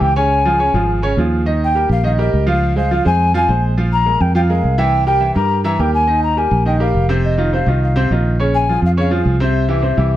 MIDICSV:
0, 0, Header, 1, 4, 480
1, 0, Start_track
1, 0, Tempo, 288462
1, 504, Time_signature, 4, 2, 24, 8
1, 16918, End_track
2, 0, Start_track
2, 0, Title_t, "Flute"
2, 0, Program_c, 0, 73
2, 23, Note_on_c, 0, 79, 107
2, 267, Note_off_c, 0, 79, 0
2, 277, Note_on_c, 0, 80, 107
2, 1889, Note_off_c, 0, 80, 0
2, 2731, Note_on_c, 0, 79, 100
2, 3151, Note_off_c, 0, 79, 0
2, 3192, Note_on_c, 0, 77, 89
2, 3398, Note_off_c, 0, 77, 0
2, 3431, Note_on_c, 0, 77, 78
2, 3531, Note_off_c, 0, 77, 0
2, 3665, Note_on_c, 0, 75, 81
2, 4098, Note_off_c, 0, 75, 0
2, 4150, Note_on_c, 0, 77, 89
2, 4581, Note_off_c, 0, 77, 0
2, 4614, Note_on_c, 0, 77, 98
2, 5053, Note_off_c, 0, 77, 0
2, 5095, Note_on_c, 0, 80, 107
2, 5534, Note_off_c, 0, 80, 0
2, 5600, Note_on_c, 0, 80, 92
2, 6027, Note_off_c, 0, 80, 0
2, 6535, Note_on_c, 0, 82, 120
2, 7007, Note_on_c, 0, 79, 103
2, 7032, Note_off_c, 0, 82, 0
2, 7234, Note_off_c, 0, 79, 0
2, 7244, Note_on_c, 0, 79, 105
2, 7343, Note_off_c, 0, 79, 0
2, 7472, Note_on_c, 0, 77, 95
2, 7972, Note_on_c, 0, 79, 101
2, 7997, Note_off_c, 0, 77, 0
2, 8424, Note_off_c, 0, 79, 0
2, 8434, Note_on_c, 0, 79, 114
2, 8883, Note_off_c, 0, 79, 0
2, 8909, Note_on_c, 0, 82, 110
2, 9360, Note_off_c, 0, 82, 0
2, 9387, Note_on_c, 0, 82, 84
2, 9654, Note_on_c, 0, 79, 94
2, 9678, Note_off_c, 0, 82, 0
2, 9873, Note_off_c, 0, 79, 0
2, 9883, Note_on_c, 0, 80, 101
2, 10327, Note_off_c, 0, 80, 0
2, 10367, Note_on_c, 0, 82, 103
2, 10617, Note_on_c, 0, 80, 96
2, 10642, Note_off_c, 0, 82, 0
2, 11087, Note_off_c, 0, 80, 0
2, 11096, Note_on_c, 0, 79, 84
2, 11310, Note_off_c, 0, 79, 0
2, 11333, Note_on_c, 0, 77, 84
2, 11771, Note_off_c, 0, 77, 0
2, 12054, Note_on_c, 0, 75, 92
2, 12491, Note_off_c, 0, 75, 0
2, 12550, Note_on_c, 0, 77, 87
2, 12979, Note_off_c, 0, 77, 0
2, 13040, Note_on_c, 0, 77, 76
2, 13686, Note_off_c, 0, 77, 0
2, 14217, Note_on_c, 0, 80, 108
2, 14650, Note_off_c, 0, 80, 0
2, 14739, Note_on_c, 0, 77, 91
2, 14831, Note_off_c, 0, 77, 0
2, 14975, Note_on_c, 0, 77, 87
2, 15390, Note_off_c, 0, 77, 0
2, 15686, Note_on_c, 0, 76, 83
2, 16918, Note_off_c, 0, 76, 0
2, 16918, End_track
3, 0, Start_track
3, 0, Title_t, "Grand piano"
3, 0, Program_c, 1, 0
3, 0, Note_on_c, 1, 52, 81
3, 0, Note_on_c, 1, 64, 76
3, 0, Note_on_c, 1, 67, 79
3, 174, Note_off_c, 1, 52, 0
3, 178, Note_off_c, 1, 64, 0
3, 182, Note_off_c, 1, 67, 0
3, 269, Note_on_c, 1, 49, 77
3, 269, Note_on_c, 1, 61, 89
3, 275, Note_on_c, 1, 73, 88
3, 661, Note_off_c, 1, 49, 0
3, 661, Note_off_c, 1, 61, 0
3, 665, Note_off_c, 1, 73, 0
3, 755, Note_on_c, 1, 53, 76
3, 757, Note_on_c, 1, 65, 71
3, 764, Note_on_c, 1, 68, 79
3, 948, Note_off_c, 1, 53, 0
3, 949, Note_off_c, 1, 65, 0
3, 954, Note_off_c, 1, 68, 0
3, 975, Note_on_c, 1, 49, 63
3, 986, Note_on_c, 1, 61, 65
3, 996, Note_on_c, 1, 73, 67
3, 1177, Note_off_c, 1, 49, 0
3, 1183, Note_off_c, 1, 61, 0
3, 1189, Note_off_c, 1, 73, 0
3, 1233, Note_on_c, 1, 65, 66
3, 1239, Note_on_c, 1, 53, 68
3, 1242, Note_on_c, 1, 68, 73
3, 1625, Note_off_c, 1, 65, 0
3, 1629, Note_off_c, 1, 53, 0
3, 1630, Note_off_c, 1, 68, 0
3, 1703, Note_on_c, 1, 49, 86
3, 1714, Note_on_c, 1, 61, 84
3, 1717, Note_on_c, 1, 73, 85
3, 1902, Note_off_c, 1, 49, 0
3, 1909, Note_off_c, 1, 61, 0
3, 1911, Note_off_c, 1, 73, 0
3, 1965, Note_on_c, 1, 53, 66
3, 1968, Note_on_c, 1, 65, 65
3, 1972, Note_on_c, 1, 68, 70
3, 2353, Note_off_c, 1, 53, 0
3, 2355, Note_off_c, 1, 65, 0
3, 2358, Note_off_c, 1, 68, 0
3, 2423, Note_on_c, 1, 51, 73
3, 2435, Note_on_c, 1, 75, 78
3, 2436, Note_on_c, 1, 63, 68
3, 2821, Note_off_c, 1, 51, 0
3, 2828, Note_off_c, 1, 63, 0
3, 2828, Note_off_c, 1, 75, 0
3, 2907, Note_on_c, 1, 55, 54
3, 2917, Note_on_c, 1, 70, 51
3, 2921, Note_on_c, 1, 67, 61
3, 3304, Note_off_c, 1, 55, 0
3, 3310, Note_off_c, 1, 70, 0
3, 3312, Note_off_c, 1, 67, 0
3, 3386, Note_on_c, 1, 51, 74
3, 3392, Note_on_c, 1, 63, 72
3, 3400, Note_on_c, 1, 75, 77
3, 3586, Note_off_c, 1, 51, 0
3, 3590, Note_off_c, 1, 63, 0
3, 3594, Note_off_c, 1, 75, 0
3, 3630, Note_on_c, 1, 55, 73
3, 3640, Note_on_c, 1, 70, 66
3, 3642, Note_on_c, 1, 67, 75
3, 4026, Note_off_c, 1, 55, 0
3, 4032, Note_off_c, 1, 70, 0
3, 4033, Note_off_c, 1, 67, 0
3, 4100, Note_on_c, 1, 53, 81
3, 4106, Note_on_c, 1, 77, 81
3, 4107, Note_on_c, 1, 65, 82
3, 4501, Note_off_c, 1, 53, 0
3, 4504, Note_off_c, 1, 77, 0
3, 4505, Note_off_c, 1, 65, 0
3, 4590, Note_on_c, 1, 56, 76
3, 4597, Note_on_c, 1, 68, 69
3, 4601, Note_on_c, 1, 72, 66
3, 4790, Note_off_c, 1, 56, 0
3, 4794, Note_off_c, 1, 68, 0
3, 4796, Note_off_c, 1, 72, 0
3, 4841, Note_on_c, 1, 53, 67
3, 4844, Note_on_c, 1, 65, 67
3, 4852, Note_on_c, 1, 77, 69
3, 5036, Note_off_c, 1, 53, 0
3, 5038, Note_off_c, 1, 65, 0
3, 5043, Note_off_c, 1, 77, 0
3, 5069, Note_on_c, 1, 56, 68
3, 5073, Note_on_c, 1, 68, 58
3, 5078, Note_on_c, 1, 72, 69
3, 5467, Note_off_c, 1, 56, 0
3, 5469, Note_off_c, 1, 68, 0
3, 5472, Note_off_c, 1, 72, 0
3, 5562, Note_on_c, 1, 53, 81
3, 5562, Note_on_c, 1, 65, 82
3, 5574, Note_on_c, 1, 77, 92
3, 5758, Note_off_c, 1, 53, 0
3, 5758, Note_off_c, 1, 65, 0
3, 5765, Note_off_c, 1, 77, 0
3, 5799, Note_on_c, 1, 56, 68
3, 5801, Note_on_c, 1, 68, 69
3, 5808, Note_on_c, 1, 72, 71
3, 6193, Note_off_c, 1, 56, 0
3, 6195, Note_off_c, 1, 68, 0
3, 6199, Note_off_c, 1, 72, 0
3, 6279, Note_on_c, 1, 53, 73
3, 6285, Note_on_c, 1, 65, 70
3, 6287, Note_on_c, 1, 77, 79
3, 6673, Note_off_c, 1, 53, 0
3, 6677, Note_off_c, 1, 65, 0
3, 6678, Note_off_c, 1, 77, 0
3, 6749, Note_on_c, 1, 56, 64
3, 6755, Note_on_c, 1, 68, 61
3, 6761, Note_on_c, 1, 70, 60
3, 7147, Note_off_c, 1, 56, 0
3, 7151, Note_off_c, 1, 68, 0
3, 7154, Note_off_c, 1, 70, 0
3, 7236, Note_on_c, 1, 65, 78
3, 7238, Note_on_c, 1, 53, 70
3, 7249, Note_on_c, 1, 77, 80
3, 7435, Note_off_c, 1, 65, 0
3, 7436, Note_off_c, 1, 53, 0
3, 7442, Note_off_c, 1, 77, 0
3, 7479, Note_on_c, 1, 56, 75
3, 7485, Note_on_c, 1, 68, 74
3, 7488, Note_on_c, 1, 70, 68
3, 7873, Note_off_c, 1, 56, 0
3, 7877, Note_off_c, 1, 68, 0
3, 7878, Note_off_c, 1, 70, 0
3, 7953, Note_on_c, 1, 52, 91
3, 7955, Note_on_c, 1, 64, 88
3, 7967, Note_on_c, 1, 76, 90
3, 8350, Note_off_c, 1, 52, 0
3, 8351, Note_off_c, 1, 64, 0
3, 8358, Note_off_c, 1, 76, 0
3, 8428, Note_on_c, 1, 55, 74
3, 8434, Note_on_c, 1, 70, 67
3, 8436, Note_on_c, 1, 67, 80
3, 8630, Note_off_c, 1, 55, 0
3, 8634, Note_off_c, 1, 67, 0
3, 8634, Note_off_c, 1, 70, 0
3, 8658, Note_on_c, 1, 52, 62
3, 8664, Note_on_c, 1, 64, 69
3, 8665, Note_on_c, 1, 76, 63
3, 8864, Note_off_c, 1, 52, 0
3, 8867, Note_off_c, 1, 64, 0
3, 8868, Note_off_c, 1, 76, 0
3, 8903, Note_on_c, 1, 55, 65
3, 8911, Note_on_c, 1, 67, 64
3, 8916, Note_on_c, 1, 70, 62
3, 9303, Note_off_c, 1, 55, 0
3, 9308, Note_off_c, 1, 67, 0
3, 9311, Note_off_c, 1, 70, 0
3, 9389, Note_on_c, 1, 52, 87
3, 9396, Note_on_c, 1, 64, 81
3, 9399, Note_on_c, 1, 76, 85
3, 9590, Note_off_c, 1, 52, 0
3, 9594, Note_off_c, 1, 64, 0
3, 9596, Note_off_c, 1, 76, 0
3, 9630, Note_on_c, 1, 55, 62
3, 9640, Note_on_c, 1, 67, 65
3, 9647, Note_on_c, 1, 70, 69
3, 10027, Note_off_c, 1, 55, 0
3, 10033, Note_off_c, 1, 67, 0
3, 10037, Note_off_c, 1, 70, 0
3, 10099, Note_on_c, 1, 51, 65
3, 10107, Note_on_c, 1, 63, 72
3, 10110, Note_on_c, 1, 75, 66
3, 10500, Note_off_c, 1, 51, 0
3, 10505, Note_off_c, 1, 63, 0
3, 10507, Note_off_c, 1, 75, 0
3, 10593, Note_on_c, 1, 55, 61
3, 10603, Note_on_c, 1, 70, 58
3, 10605, Note_on_c, 1, 67, 61
3, 10988, Note_off_c, 1, 55, 0
3, 10994, Note_off_c, 1, 70, 0
3, 10995, Note_off_c, 1, 67, 0
3, 11074, Note_on_c, 1, 51, 72
3, 11078, Note_on_c, 1, 63, 70
3, 11086, Note_on_c, 1, 75, 66
3, 11272, Note_off_c, 1, 51, 0
3, 11274, Note_off_c, 1, 63, 0
3, 11279, Note_off_c, 1, 75, 0
3, 11312, Note_on_c, 1, 55, 69
3, 11319, Note_on_c, 1, 67, 75
3, 11325, Note_on_c, 1, 70, 74
3, 11707, Note_off_c, 1, 55, 0
3, 11711, Note_off_c, 1, 67, 0
3, 11714, Note_off_c, 1, 70, 0
3, 11797, Note_on_c, 1, 48, 84
3, 11798, Note_on_c, 1, 60, 81
3, 11805, Note_on_c, 1, 72, 90
3, 12189, Note_off_c, 1, 48, 0
3, 12190, Note_off_c, 1, 60, 0
3, 12194, Note_off_c, 1, 72, 0
3, 12272, Note_on_c, 1, 51, 79
3, 12283, Note_on_c, 1, 65, 71
3, 12285, Note_on_c, 1, 63, 73
3, 12470, Note_off_c, 1, 51, 0
3, 12476, Note_off_c, 1, 65, 0
3, 12477, Note_off_c, 1, 63, 0
3, 12524, Note_on_c, 1, 48, 67
3, 12532, Note_on_c, 1, 60, 63
3, 12534, Note_on_c, 1, 72, 64
3, 12716, Note_off_c, 1, 48, 0
3, 12721, Note_off_c, 1, 60, 0
3, 12722, Note_off_c, 1, 72, 0
3, 12767, Note_on_c, 1, 51, 72
3, 12779, Note_on_c, 1, 63, 59
3, 12783, Note_on_c, 1, 65, 58
3, 13154, Note_off_c, 1, 51, 0
3, 13161, Note_off_c, 1, 63, 0
3, 13164, Note_off_c, 1, 65, 0
3, 13240, Note_on_c, 1, 48, 76
3, 13242, Note_on_c, 1, 60, 91
3, 13249, Note_on_c, 1, 72, 85
3, 13433, Note_off_c, 1, 48, 0
3, 13435, Note_off_c, 1, 60, 0
3, 13439, Note_off_c, 1, 72, 0
3, 13496, Note_on_c, 1, 51, 70
3, 13502, Note_on_c, 1, 63, 68
3, 13509, Note_on_c, 1, 65, 72
3, 13879, Note_off_c, 1, 51, 0
3, 13882, Note_off_c, 1, 63, 0
3, 13886, Note_off_c, 1, 65, 0
3, 13968, Note_on_c, 1, 49, 74
3, 13970, Note_on_c, 1, 61, 75
3, 13981, Note_on_c, 1, 73, 78
3, 14353, Note_off_c, 1, 49, 0
3, 14355, Note_off_c, 1, 61, 0
3, 14361, Note_off_c, 1, 73, 0
3, 14461, Note_on_c, 1, 53, 58
3, 14466, Note_on_c, 1, 65, 62
3, 14469, Note_on_c, 1, 68, 61
3, 14841, Note_off_c, 1, 53, 0
3, 14844, Note_off_c, 1, 65, 0
3, 14846, Note_off_c, 1, 68, 0
3, 14926, Note_on_c, 1, 49, 81
3, 14934, Note_on_c, 1, 61, 74
3, 14935, Note_on_c, 1, 73, 83
3, 15115, Note_off_c, 1, 49, 0
3, 15120, Note_off_c, 1, 61, 0
3, 15120, Note_off_c, 1, 73, 0
3, 15154, Note_on_c, 1, 53, 75
3, 15162, Note_on_c, 1, 65, 73
3, 15162, Note_on_c, 1, 68, 73
3, 15544, Note_off_c, 1, 53, 0
3, 15549, Note_off_c, 1, 65, 0
3, 15549, Note_off_c, 1, 68, 0
3, 15645, Note_on_c, 1, 60, 86
3, 15646, Note_on_c, 1, 48, 77
3, 15653, Note_on_c, 1, 72, 83
3, 16030, Note_off_c, 1, 48, 0
3, 16030, Note_off_c, 1, 60, 0
3, 16035, Note_off_c, 1, 72, 0
3, 16114, Note_on_c, 1, 52, 75
3, 16118, Note_on_c, 1, 64, 78
3, 16120, Note_on_c, 1, 67, 68
3, 16307, Note_off_c, 1, 52, 0
3, 16309, Note_off_c, 1, 64, 0
3, 16310, Note_off_c, 1, 67, 0
3, 16341, Note_on_c, 1, 60, 68
3, 16342, Note_on_c, 1, 48, 69
3, 16351, Note_on_c, 1, 72, 66
3, 16539, Note_off_c, 1, 48, 0
3, 16539, Note_off_c, 1, 60, 0
3, 16544, Note_off_c, 1, 72, 0
3, 16589, Note_on_c, 1, 52, 65
3, 16601, Note_on_c, 1, 64, 74
3, 16604, Note_on_c, 1, 67, 64
3, 16918, Note_off_c, 1, 52, 0
3, 16918, Note_off_c, 1, 64, 0
3, 16918, Note_off_c, 1, 67, 0
3, 16918, End_track
4, 0, Start_track
4, 0, Title_t, "Fingered electric bass"
4, 0, Program_c, 2, 33
4, 12, Note_on_c, 2, 37, 82
4, 1131, Note_off_c, 2, 37, 0
4, 1223, Note_on_c, 2, 32, 85
4, 1897, Note_off_c, 2, 32, 0
4, 1945, Note_on_c, 2, 39, 88
4, 3060, Note_off_c, 2, 39, 0
4, 3148, Note_on_c, 2, 34, 88
4, 3822, Note_off_c, 2, 34, 0
4, 3882, Note_on_c, 2, 37, 85
4, 4991, Note_off_c, 2, 37, 0
4, 5085, Note_on_c, 2, 41, 101
4, 5752, Note_off_c, 2, 41, 0
4, 5799, Note_on_c, 2, 34, 89
4, 6910, Note_off_c, 2, 34, 0
4, 6995, Note_on_c, 2, 41, 98
4, 7667, Note_off_c, 2, 41, 0
4, 7714, Note_on_c, 2, 36, 78
4, 8826, Note_off_c, 2, 36, 0
4, 8913, Note_on_c, 2, 43, 100
4, 9585, Note_off_c, 2, 43, 0
4, 9635, Note_on_c, 2, 39, 89
4, 10745, Note_off_c, 2, 39, 0
4, 10835, Note_on_c, 2, 34, 93
4, 11505, Note_off_c, 2, 34, 0
4, 11554, Note_on_c, 2, 29, 87
4, 12662, Note_off_c, 2, 29, 0
4, 12751, Note_on_c, 2, 36, 95
4, 13420, Note_off_c, 2, 36, 0
4, 13484, Note_on_c, 2, 34, 83
4, 14584, Note_off_c, 2, 34, 0
4, 14675, Note_on_c, 2, 41, 87
4, 15340, Note_off_c, 2, 41, 0
4, 15395, Note_on_c, 2, 36, 92
4, 16498, Note_off_c, 2, 36, 0
4, 16596, Note_on_c, 2, 36, 95
4, 16918, Note_off_c, 2, 36, 0
4, 16918, End_track
0, 0, End_of_file